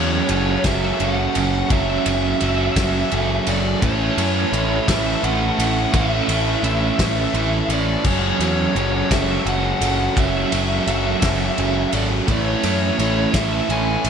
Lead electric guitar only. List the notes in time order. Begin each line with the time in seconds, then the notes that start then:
Already playing: C#5
0.67 E5
1.02 F#5
1.72 E5
3.49 D5
3.84 C#5
4.89 E5
5.24 F#5
5.95 E5
7.73 D5
8.07 C#5
9.13 E5
9.49 F#5
10.19 E5
11.95 D5
12.32 C#5
13.35 E5
13.71 G#5